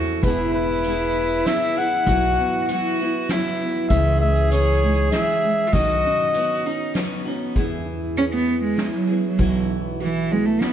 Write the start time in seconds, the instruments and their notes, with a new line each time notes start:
Already playing: upright bass E2, felt piano E3 C4 E4 A4, steel-string acoustic guitar E3 A3 C4 E4 A4, cello F#4
0.23 upright bass E1, steel-string acoustic guitar E3 B3 E4, felt piano B3 G#4, cello E4, flugelhorn B4, kick, closed hi-hat
0.27 steel-string acoustic guitar G#4
0.54 felt piano E4, flugelhorn B4
0.84 steel-string acoustic guitar E3 B3 E4, felt piano B3, closed hi-hat
0.88 steel-string acoustic guitar G#4
1.16 felt piano E4
1.46 steel-string acoustic guitar E3 B3 E4 G#4, felt piano B3, flugelhorn E5, snare, closed hi-hat
1.76 steel-string acoustic guitar B3 E4 G#4, felt piano E4, flugelhorn F#5
2.06 upright bass B1, steel-string acoustic guitar B2 E3 B3 E4 F#4, felt piano F#3 E4, cello F#4, kick, closed hi-hat
2.37 felt piano B3
2.68 steel-string acoustic guitar E3 B3 E4 F#4, felt piano F#3, cello F#4, closed hi-hat
2.99 felt piano B3, steel-string acoustic guitar E4 F#4
3.03 steel-string acoustic guitar B3
3.29 steel-string acoustic guitar E3 B3 E4 F#4, felt piano F#3, cello E4, snare, closed hi-hat
3.61 felt piano B3
3.89 upright bass C#2, steel-string acoustic guitar C#3 E3 C#4, felt piano E3, cello G#4, flugelhorn E5, kick, closed hi-hat
3.93 steel-string acoustic guitar G#4
4.21 felt piano G#3, flugelhorn E5
4.51 steel-string acoustic guitar E3 C#4 D#4 G#4, felt piano E3, flugelhorn C#5, closed hi-hat
4.82 felt piano G#3, steel-string acoustic guitar C#4 D#4 G#4
5.12 steel-string acoustic guitar E3 C#4, felt piano E3, flugelhorn E5, snare, closed hi-hat
5.16 steel-string acoustic guitar G#4
5.44 felt piano G#3
5.67 cello F4
5.73 upright bass B1, steel-string acoustic guitar B2 F#3 C#4 D#4 F#4, felt piano D#3 F#4, cello F#4, flugelhorn D#5, kick, closed hi-hat
6.05 felt piano C#4
6.33 steel-string acoustic guitar F#3 C#4 D#4 F#4, felt piano B3, cello F#4, closed hi-hat
6.65 felt piano C#4, steel-string acoustic guitar C#4 D#4 F#4, cello D#4
6.94 steel-string acoustic guitar F#3 C#4 D#4 F#4, felt piano B3, cello B3, snare, closed hi-hat
7.25 felt piano C#4, steel-string acoustic guitar C#4 D#4 F#4
7.55 upright bass E2, felt piano E3 G#4, steel-string acoustic guitar E3 B3 E4 G#4, kick, ride
7.86 felt piano E4
8.16 steel-string acoustic guitar E3 B3 E4 G#4, cello C#4, felt piano G#4, ride
8.34 cello B3
8.48 felt piano B3
8.63 cello G#3
8.76 steel-string acoustic guitar E3 B3 E4 G#4, felt piano E4, snare
8.95 cello F#3
9.07 felt piano B3, steel-string acoustic guitar E4 G#4
9.11 steel-string acoustic guitar B3
9.27 cello F#3
9.38 upright bass B1, steel-string acoustic guitar B2 E3 B3 E4 F#4, felt piano E3 F#4, kick, ride
9.69 felt piano E4
10.00 steel-string acoustic guitar E3 B3 E4 F#4, cello E3, felt piano F#4, ride
10.31 cello G#3, felt piano B3
10.46 cello A3
10.60 steel-string acoustic guitar E3 B3 E4, cello B3, felt piano E4, snare
10.65 steel-string acoustic guitar F#4